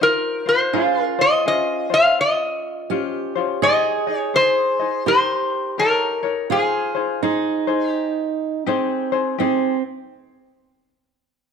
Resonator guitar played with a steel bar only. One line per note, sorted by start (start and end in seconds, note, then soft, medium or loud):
0.03 0.48 A#4 medium
0.49 1.03 C5 medium
1.03 1.22 A#4 medium
1.21 1.46 D#5 loud
1.48 1.93 D#5 loud
1.94 2.20 F5 loud
2.21 3.33 D#5 medium
3.63 4.18 D#5 loud
4.18 4.35 C#5 loud
4.36 5.07 C5 loud
5.08 5.79 C5 loud
5.79 6.52 A#4 medium
6.52 7.86 G#4 medium
7.86 8.64 G4 medium